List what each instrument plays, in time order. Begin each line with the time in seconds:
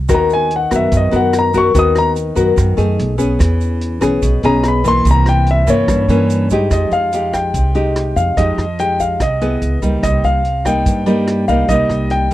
0.09 upright bass D#2, nylon-string guitar D#3 B3 F#4 A#4, kick, cross-stick, closed hi-hat, shaker
0.14 grand piano A#5
0.30 grand piano G#5, closed hi-hat, shaker
0.51 closed hi-hat
0.56 grand piano F#5
0.71 upright bass F#2, nylon-string guitar B3 F#4 A#4, kick, cross-stick, closed hi-hat, shaker
0.76 grand piano E5
0.91 upright bass F#2, nylon-string guitar D#3, kick, closed hi-hat, shaker
0.97 grand piano D#5
1.11 upright bass F#2, nylon-string guitar B3 F#4 A#4, closed hi-hat, shaker
1.16 grand piano F#5
1.33 cross-stick, closed hi-hat, shaker
1.39 grand piano A#5
1.54 nylon-string guitar B3 F#4 A#4, grand piano C#6, kick, closed hi-hat, shaker
1.74 upright bass D#2, nylon-string guitar D#3 B3 F#4 A#4, kick, closed hi-hat, shaker
1.79 grand piano D#6
1.95 grand piano A#5, cross-stick, closed hi-hat, shaker
2.16 closed hi-hat, shaker
2.35 upright bass F#2, nylon-string guitar B3 F#4 A#4, kick, closed hi-hat, shaker
2.56 upright bass F#2, nylon-string guitar D#3, kick, cross-stick, closed hi-hat, shaker
2.77 upright bass F#2, nylon-string guitar A3 D#4 G#4, closed hi-hat, shaker
2.99 upright bass B1, closed hi-hat
3.18 nylon-string guitar B3 C#4 G#4, kick, closed hi-hat, shaker
3.39 upright bass E2, nylon-string guitar E3, kick, cross-stick, closed hi-hat, shaker
3.61 closed hi-hat, shaker
3.81 closed hi-hat
4.01 upright bass B1, nylon-string guitar B3 C#4 G#4, kick, cross-stick, closed hi-hat, shaker
4.22 upright bass B1, nylon-string guitar B2, kick, closed hi-hat, shaker
4.43 upright bass B1, nylon-string guitar B3 C#4 G#4, grand piano A#5, closed hi-hat, shaker
4.63 grand piano A#5, cross-stick, closed hi-hat, shaker
4.68 grand piano B5
4.84 nylon-string guitar E3 A#3, grand piano C6, kick, closed hi-hat, shaker
5.05 upright bass C2, nylon-string guitar C3, kick, closed hi-hat, shaker
5.11 grand piano A#5
5.26 grand piano G5, cross-stick, closed hi-hat, shaker
5.46 closed hi-hat
5.51 grand piano E5
5.67 upright bass G2, nylon-string guitar E3 A#3 C#4, grand piano C#5, kick, closed hi-hat, shaker
5.88 upright bass G2, nylon-string guitar G2, kick, cross-stick, closed hi-hat, shaker
6.08 upright bass G2, nylon-string guitar E3 A#3 C#4, closed hi-hat, shaker
6.30 closed hi-hat, shaker
6.50 nylon-string guitar G#3 D#4 G4, kick, closed hi-hat, shaker
6.71 upright bass F2, nylon-string guitar F3, grand piano D#5, kick, cross-stick, closed hi-hat, shaker
6.91 upright bass F2, grand piano F5, closed hi-hat, shaker
7.13 nylon-string guitar G#3 D#4 G4, closed hi-hat, shaker
7.33 grand piano G5, kick, cross-stick, closed hi-hat, shaker
7.54 upright bass C2, nylon-string guitar C3, kick, closed hi-hat, shaker
7.75 nylon-string guitar G#3 D#4 G4, closed hi-hat, shaker
7.96 cross-stick, closed hi-hat
8.16 upright bass F2, grand piano F5, kick, closed hi-hat, shaker
8.37 upright bass F2, nylon-string guitar F3 G#3 D#4 G4, grand piano D#5, kick, closed hi-hat, shaker
8.58 upright bass F2, cross-stick, closed hi-hat, shaker
8.79 nylon-string guitar G#3 D#4 G4, grand piano G5, closed hi-hat, shaker
8.99 grand piano F5, kick, closed hi-hat, shaker
9.20 upright bass C2, nylon-string guitar C3, grand piano D#5, kick, cross-stick, closed hi-hat, shaker
9.41 nylon-string guitar B3 E4 G#4, closed hi-hat, shaker
9.62 upright bass C#2, closed hi-hat, shaker
9.82 upright bass C#2, nylon-string guitar G3 A#3 D#4, kick, closed hi-hat, shaker
10.03 upright bass C2, nylon-string guitar C3, grand piano D#5, kick, cross-stick, closed hi-hat, shaker
10.24 upright bass C2, grand piano F5, closed hi-hat, shaker
10.45 closed hi-hat
10.65 nylon-string guitar G3 A#3 D#4, grand piano G5, kick, cross-stick, closed hi-hat, shaker
10.86 upright bass G2, nylon-string guitar G2, kick, closed hi-hat, shaker
11.06 nylon-string guitar G3 A#3 D#4, closed hi-hat, shaker
11.27 cross-stick, closed hi-hat
11.48 upright bass C2, nylon-string guitar G3 A#3 D#4, grand piano F5, kick, closed hi-hat, shaker
11.68 upright bass C2, nylon-string guitar C3 G3 A#3 D#4, grand piano D#5, kick, closed hi-hat, shaker
11.89 upright bass C2, cross-stick, closed hi-hat, shaker
12.10 grand piano G5, closed hi-hat
12.31 nylon-string guitar G3, closed hi-hat